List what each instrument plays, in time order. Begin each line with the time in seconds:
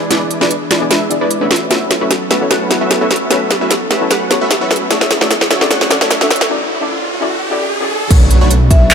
Already playing: analog synth pad E3 D4 G#4
0.10 supersaw synth G#3 D4 E4 B4 D5, synth pluck B3 D4 E4 G#4 D5, snare, closed hi-hat
0.31 closed hi-hat
0.40 supersaw synth G#3 D4 E4 B4 D5, synth pluck B3 D4 E4 G#4 D5, snare
0.51 closed hi-hat
0.71 supersaw synth G#3 D4 E4 B4 D5, snare, closed hi-hat
0.80 synth pluck B3 D4 E4 G#4 D5
0.91 supersaw synth G#3 D4 E4 B4 E5, snare, closed hi-hat
1.10 synth pluck B3 D4 E4 G#4 D5, closed hi-hat
1.21 supersaw synth G#3 D4 E4 B4 D5
1.31 closed hi-hat
1.40 supersaw synth A3 C#4 F#4 B4 E5, synth pluck B3 D4 E4 G#4 D5
1.51 analog synth pad F#3 B3 C#4 A4, snare, closed hi-hat
1.56 closed hi-hat
1.69 supersaw synth A3 C#4 F#4 B4 E5, synth pluck B3 E4 F#4 A4 C#5, snare, closed hi-hat, riser
1.91 snare, closed hi-hat
2.00 supersaw synth A3 C#4 F#4 B4 E5, synth pluck B3 E4 F#4 A4 C#5
2.11 snare, closed hi-hat
2.31 supersaw synth A3 C#4 F#4 B4 E5, snare, closed hi-hat
2.40 synth pluck B3 E4 F#4 A4 C#5
2.51 supersaw synth A3 C#4 F#4 B4 F#5, snare, closed hi-hat
2.69 synth pluck B3 E4 F#4 A4 C#5, snare, closed hi-hat
2.81 supersaw synth A3 C#4 F#4 B4 E5
2.91 snare, closed hi-hat
3.00 supersaw synth A3 C#4 F#4 B4 E5, synth pluck B3 E4 F#4 A4 C#5
3.11 snare, closed hi-hat
3.16 closed hi-hat
3.30 supersaw synth A3 C#4 F#4 B4 E5, synth pluck B3 E4 F#4 A4 C#5, snare, closed hi-hat
3.51 snare, closed hi-hat
3.60 supersaw synth A3 C#4 F#4 B4 E5, synth pluck B3 E4 F#4 A4 C#5
3.71 snare, closed hi-hat
3.91 supersaw synth A3 C#4 F#4 B4 E5, snare, closed hi-hat
4.00 synth pluck B3 E4 F#4 A4 C#5
4.11 supersaw synth A3 C#4 F#4 B4 F#5, snare, closed hi-hat
4.30 synth pluck B3 E4 F#4 A4 C#5, snare, closed hi-hat
4.41 supersaw synth A3 C#4 F#4 B4 E5
4.51 snare, closed hi-hat
4.60 supersaw synth A3 C#4 F#4 B4 E5, synth pluck B3 E4 F#4 A4 C#5
4.71 snare, closed hi-hat
4.76 closed hi-hat
4.90 supersaw synth A3 D4 F#4 C#5 E5, synth pluck C#4 E4 F#4 A4 D5, analog synth pad D4 E4 C#5, snare, closed hi-hat
5.01 snare
5.11 snare, closed hi-hat
5.20 supersaw synth A3 D4 F#4 C#5 E5, synth pluck C#4 E4 F#4 A4 D5, snare
5.31 snare, closed hi-hat
5.41 snare
5.50 supersaw synth A3 D4 F#4 C#5 E5, snare, closed hi-hat
5.60 synth pluck C#4 E4 F#4 A4 D5, snare
5.71 supersaw synth A3 D4 F#4 C#5 F#5, snare, closed hi-hat
5.81 snare
5.89 synth pluck C#4 E4 F#4 A4 D5, snare, closed hi-hat
6.01 supersaw synth A3 D4 F#4 C#5 E5, snare
6.11 snare, closed hi-hat
6.20 supersaw synth A3 D4 F#4 C#5 E5, synth pluck C#4 E4 F#4 A4 D5, snare
6.31 snare, closed hi-hat
6.36 closed hi-hat
6.41 snare
6.49 synth pluck C#4 E4 F#4 A4 D5
6.80 synth pluck C#4 E4 F#4 A4 D5
7.20 synth pluck C#4 E4 F#4 A4 D5
7.50 synth pluck C#4 E4 F#4 A4 D5
7.80 synth pluck C#4 E4 F#4 A4 D5
8.11 detuned saw bass B1, analog synth pad A3 C#4 D4, supersaw synth A3 D4 F#4 B4 C#5, kick, closed hi-hat, crash, impact
8.31 closed hi-hat
8.41 supersaw synth A3 D4 F#4 B4 C#5
8.51 closed hi-hat
8.71 supersaw synth A3 D4 F#4 B4 C#5, marimba E5, kick, closed hi-hat
8.91 supersaw synth A3 D4 F#4 B4 D5, clap, closed hi-hat